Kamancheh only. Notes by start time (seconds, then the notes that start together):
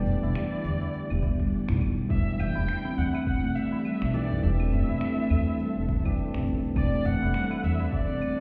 Already playing: D5
2.10 E5
2.40 G5
2.98 F#5
3.27 F#5
3.56 E5
4.14 D5
4.44 E5
6.76 D5
7.06 F#5
7.64 E5
7.93 D5